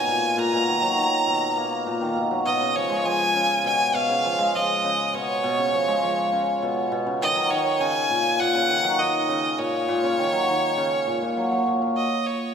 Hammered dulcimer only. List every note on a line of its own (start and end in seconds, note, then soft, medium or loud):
0.00 0.13 B2 medium
0.08 0.36 A#2 medium
0.37 0.58 A#2 loud
0.53 0.73 B2 medium
0.67 0.96 D#3 medium
0.82 1.02 F#3 loud
0.97 1.32 D#3 medium
1.27 1.91 B2 medium
1.57 2.22 A#3 medium
1.86 2.06 A#2 medium
2.01 2.21 D#3 medium
2.16 2.45 B2 medium
2.31 2.51 F#3 medium
2.46 2.66 B2 loud
2.60 3.33 C#3 medium
2.75 3.03 F3 medium
2.90 4.38 G#3 loud
3.05 3.40 F3 medium
3.34 3.70 C#3 medium
3.64 3.93 B2 medium
3.94 4.14 B2 medium
4.09 4.83 C#3 medium
4.24 4.53 F3 medium
4.39 5.87 G#3 loud
4.54 4.88 F3 medium
4.84 5.18 C#3 medium
5.14 5.42 B2 medium
5.44 5.63 B2 loud
5.58 6.31 C#3 medium
5.73 6.02 F3 medium
5.88 7.26 G#3 loud
6.03 6.37 F3 medium
6.33 6.67 C#3 medium
6.62 6.91 B2 medium
6.92 7.11 B2 loud
7.06 7.26 C#3 medium
7.21 7.49 D#3 medium
7.36 7.56 F#3 medium
7.51 7.85 D#3 medium
7.80 8.15 C#3 medium
8.10 8.39 A#2 medium
8.40 8.60 A#2 loud
8.54 8.75 C#3 medium
8.69 8.98 D#3 medium
8.84 9.04 F#3 loud
8.99 9.34 D#3 medium
9.29 9.64 C#3 medium
9.59 9.87 A#2 medium
9.88 10.08 A#2 loud
10.03 10.23 C#3 medium
10.18 10.47 D#3 medium
10.33 10.53 F#3 loud
10.48 10.82 D#3 medium
10.77 11.12 C#3 medium
11.07 11.21 A#2 medium
11.22 11.66 A#2 medium
11.37 11.51 F#3 medium
11.52 11.80 F#3 medium
11.67 12.01 A#2 medium
11.82 12.01 F#3 medium